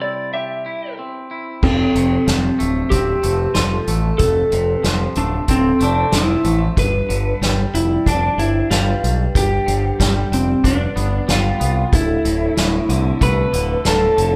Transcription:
0.00 0.65 C3 soft
0.00 0.98 G3 soft
0.00 0.98 C4 soft
0.00 0.65 E4 soft
0.00 0.31 D5 medium
0.34 1.63 G4 soft
0.34 0.94 E5 medium
0.66 1.30 E4 soft
0.99 1.63 C4 soft
1.31 1.63 E4 soft
1.63 1.85 F1 medium
1.63 3.24 F2 medium
1.63 2.96 C4 medium
1.63 2.27 A4 medium
1.63 kick medium
1.63 crash medium
1.95 2.17 F1 medium
1.95 3.56 C3 medium
1.95 closed hi-hat medium
2.27 2.50 F1 medium
2.27 3.54 F3 medium
2.27 snare medium
2.27 closed hi-hat medium
2.59 2.83 D1 medium
2.59 3.22 A3 medium
2.59 3.24 C5 medium
2.59 closed hi-hat medium
2.90 3.14 D1 medium
2.90 4.53 C4 medium
2.90 3.54 G4 medium
2.90 kick medium
2.90 closed hi-hat medium
3.23 3.47 F1 medium
3.23 3.87 A3 medium
3.23 3.56 B4 medium
3.23 closed hi-hat medium
3.55 3.78 F1 medium
3.55 4.82 F3 medium
3.55 4.00 F4 medium
3.55 4.20 A4 medium
3.55 snare medium
3.55 closed hi-hat medium
3.87 4.10 A1 medium
3.87 5.16 A3 medium
3.87 closed hi-hat medium
4.18 4.42 F1 medium
4.18 5.81 F2 medium
4.18 4.80 A4 medium
4.18 kick loud
4.18 closed hi-hat medium
4.52 4.75 F1 medium
4.52 6.14 C3 medium
4.52 4.85 B4 medium
4.52 closed hi-hat medium
4.83 5.07 F1 medium
4.83 6.10 F3 medium
4.83 5.15 C5 medium
4.83 snare medium
4.83 closed hi-hat medium
5.15 5.39 D1 medium
5.15 5.79 A3 medium
5.15 5.47 D4 medium
5.15 5.49 C5 medium
5.15 closed hi-hat medium
5.48 5.71 D1 medium
5.48 6.78 C4 medium
5.48 5.83 C4 medium
5.48 6.14 A4 medium
5.48 kick medium
5.48 closed hi-hat medium
5.80 6.03 F1 medium
5.80 6.43 A3 medium
5.80 6.12 D4 medium
5.80 closed hi-hat medium
6.12 6.35 F1 medium
6.12 6.77 F3 medium
6.12 6.78 E5 medium
6.12 snare medium
6.12 closed hi-hat medium
6.16 6.60 E4 medium
6.44 6.67 A1 medium
6.44 6.77 A3 medium
6.44 closed hi-hat medium
6.77 7.00 G1 medium
6.77 8.38 G2 medium
6.77 7.42 B4 medium
6.77 7.39 B4 medium
6.77 kick medium
6.77 closed hi-hat medium
7.09 7.32 G1 medium
7.09 8.71 D3 medium
7.09 closed hi-hat medium
7.41 7.64 G1 medium
7.41 8.69 G3 medium
7.41 snare medium
7.41 closed hi-hat medium
7.74 7.97 F1 medium
7.74 8.08 E4 medium
7.74 8.39 D5 medium
7.74 closed hi-hat medium
8.06 8.29 F1 medium
8.06 10.63 D4 medium
8.06 8.41 D4 medium
8.06 kick medium
8.06 closed hi-hat medium
8.38 8.61 G1 medium
8.38 8.70 E4 medium
8.38 8.71 C5 medium
8.38 closed hi-hat medium
8.71 8.93 G1 medium
8.71 9.99 G3 medium
8.71 9.16 F4 medium
8.71 9.35 B4 medium
8.71 snare medium
8.71 closed hi-hat medium
9.04 9.26 B1 medium
9.04 closed hi-hat medium
9.35 9.58 G1 medium
9.35 10.96 G2 medium
9.35 10.36 G4 medium
9.35 kick loud
9.35 closed hi-hat medium
9.66 9.90 G1 medium
9.66 11.28 D3 medium
9.66 10.00 C5 medium
9.66 closed hi-hat medium
10.00 10.22 G1 medium
10.00 11.27 G3 medium
10.00 10.31 D5 medium
10.00 kick medium
10.00 snare medium
10.00 closed hi-hat medium
10.32 10.54 F1 medium
10.32 10.63 C4 medium
10.32 10.64 D5 medium
10.32 closed hi-hat medium
10.64 10.86 F1 medium
10.64 14.14 D4 medium
10.64 11.31 D4 medium
10.64 11.29 B4 medium
10.64 kick medium
10.64 closed hi-hat medium
10.96 11.19 G1 medium
10.96 11.59 B3 medium
10.96 closed hi-hat medium
11.28 11.51 G1 medium
11.28 11.92 G3 medium
11.28 11.90 F4 medium
11.28 11.93 F5 medium
11.28 snare loud
11.28 closed hi-hat medium
11.60 11.83 C2 medium
11.60 11.92 B3 medium
11.60 closed hi-hat medium
11.92 12.15 D1 medium
11.92 13.53 D2 medium
11.92 13.26 E4 medium
11.92 12.57 A4 medium
11.92 kick loud
11.92 closed hi-hat medium
12.25 12.47 D1 medium
12.25 12.56 A2 medium
12.25 closed hi-hat medium
12.57 12.80 D1 medium
12.57 13.84 A2 medium
12.57 snare medium
12.57 closed hi-hat medium
12.89 13.11 C2 medium
12.89 13.52 D3 medium
12.89 13.53 C4 medium
12.89 closed hi-hat medium
13.21 13.44 C2 medium
13.21 14.36 A3 medium
13.21 13.87 B4 medium
13.21 kick medium
13.21 closed hi-hat medium
13.53 13.76 D1 medium
13.53 14.16 D3 medium
13.53 13.85 B4 medium
13.53 closed hi-hat medium
13.85 14.08 D1 medium
13.85 14.36 A2 medium
13.85 14.36 A4 medium
13.85 14.31 A4 medium
13.85 snare loud
13.85 closed hi-hat medium
14.17 14.36 F1 medium
14.17 14.36 D3 medium
14.17 closed hi-hat medium

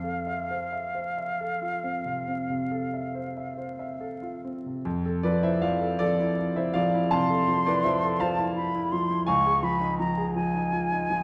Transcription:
0.00 2.24 F2 soft
0.00 0.18 C4 soft
0.00 0.42 A4 soft
0.00 4.41 F5 medium
0.27 0.64 E5 soft
0.51 0.87 C5 soft
0.72 1.09 E5 soft
0.95 1.31 C5 soft
1.18 1.54 E5 soft
1.41 1.76 A4 soft
1.62 1.97 F4 soft
1.84 2.19 C4 soft
2.05 2.41 C3 soft
2.28 2.63 C4 soft
2.50 2.85 C3 soft
2.72 3.07 A4 soft
2.94 3.28 E5 soft
3.15 3.49 C5 soft
3.37 3.71 E5 soft
3.57 3.92 C5 soft
3.79 4.14 E5 soft
4.01 4.35 A4 soft
4.22 4.57 F4 soft
4.45 4.77 C4 soft
4.66 4.85 C3 soft
4.85 7.06 F2 medium
5.06 5.35 A4 medium
5.23 5.54 F3 medium
5.23 5.41 B4 medium
5.23 5.42 D5 medium
5.43 5.73 E4 medium
5.43 5.60 C5 medium
5.43 5.61 E5 medium
5.62 5.92 F3 medium
5.62 5.97 D5 medium
5.62 5.99 F5 medium
5.81 5.98 A4 medium
5.99 6.30 F3 medium
5.99 6.52 A4 medium
5.99 6.55 D5 loud
6.20 6.49 E4 medium
6.38 6.56 F4 soft
6.56 6.85 E4 medium
6.56 6.73 C5 medium
6.56 6.74 E5 medium
6.74 7.04 F3 medium
6.74 7.08 D5 medium
6.74 7.10 F5 loud
6.94 7.22 E4 medium
7.10 7.40 C3 medium
7.10 7.62 F5 medium
7.10 7.65 A5 loud
7.10 8.22 C6 medium
7.30 7.59 A4 medium
7.48 7.77 F3 medium
7.66 7.96 E4 medium
7.66 7.84 B4 medium
7.66 7.84 D5 medium
7.84 8.14 F3 medium
7.84 8.19 C5 medium
7.84 8.20 E5 medium
8.04 8.32 A4 medium
8.20 8.49 F3 medium
8.20 9.22 C5 medium
8.20 9.26 F5 medium
8.20 8.56 A5 medium
8.39 8.67 E4 medium
8.56 8.74 F4 soft
8.56 8.93 B5 medium
8.75 9.02 E4 medium
8.92 9.20 F3 medium
8.92 9.26 C6 medium
9.10 9.27 E4 soft
9.27 11.23 C#2 medium
9.27 11.23 F5 medium
9.27 11.23 G#5 loud
9.27 9.65 C#6 medium
9.46 9.74 G#4 medium
9.63 9.91 F3 medium
9.63 9.98 B5 medium
9.81 10.09 D#4 medium
9.99 10.28 F3 medium
9.99 10.34 A#5 medium
10.18 10.46 G#4 medium
10.35 10.65 F3 medium
10.35 11.23 G#5 medium
10.54 10.83 D#4 soft
10.72 10.90 F4 soft
10.92 11.20 D#4 medium
11.10 11.23 F3 medium

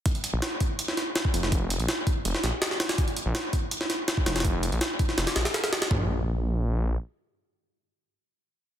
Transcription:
0.06 kick loud
0.06 closed hi-hat medium
0.15 closed hi-hat soft
0.24 closed hi-hat medium
0.33 0.41 A#1 loud
0.42 snare loud
0.42 closed hi-hat medium
0.60 kick loud
0.60 closed hi-hat medium
0.79 closed hi-hat medium
0.88 snare soft
0.97 snare medium
0.97 closed hi-hat medium
1.16 snare loud
1.16 closed hi-hat medium
1.25 kick medium
1.34 1.78 F1 medium
1.34 closed hi-hat medium
1.43 snare medium
1.52 kick loud
1.52 closed hi-hat medium
1.70 closed hi-hat medium
1.79 1.87 A#1 loud
1.79 closed hi-hat soft
1.88 snare loud
1.88 closed hi-hat medium
2.07 kick loud
2.07 closed hi-hat medium
2.25 2.33 F1 loud
2.25 closed hi-hat medium
2.35 snare medium
2.43 2.52 A#1 medium
2.43 snare soft
2.43 closed hi-hat medium
2.62 snare loud
2.62 closed hi-hat medium
2.71 snare soft
2.80 snare loud
2.80 closed hi-hat medium
2.89 snare loud
2.89 closed hi-hat medium
2.98 kick loud
2.98 closed hi-hat medium
3.08 closed hi-hat soft
3.17 closed hi-hat medium
3.26 3.34 A#1 loud
3.35 snare loud
3.35 closed hi-hat medium
3.53 kick medium
3.53 closed hi-hat medium
3.71 closed hi-hat medium
3.81 snare soft
3.90 snare medium
3.90 closed hi-hat medium
4.08 snare loud
4.08 closed hi-hat medium
4.17 kick medium
4.26 4.71 F1 medium
4.26 snare loud
4.26 closed hi-hat medium
4.36 snare medium
4.36 closed hi-hat medium
4.40 snare medium
4.40 closed hi-hat medium
4.45 kick loud
4.45 closed hi-hat medium
4.63 closed hi-hat medium
4.72 4.80 A#1 loud
4.72 closed hi-hat soft
4.81 snare loud
4.81 closed hi-hat medium
4.99 kick loud
4.99 closed hi-hat medium
5.09 snare soft
5.18 5.26 F1 loud
5.18 snare loud
5.18 closed hi-hat medium
5.27 snare loud
5.27 closed hi-hat medium
5.36 5.45 A#1 medium
5.36 snare loud
5.36 closed hi-hat medium
5.45 snare loud
5.45 closed hi-hat medium
5.54 snare loud
5.54 closed hi-hat medium
5.64 snare loud
5.64 closed hi-hat medium
5.73 snare loud
5.73 closed hi-hat medium
5.82 snare loud
5.82 closed hi-hat medium
5.91 6.97 A#1 loud
5.91 kick loud
5.91 floor tom loud

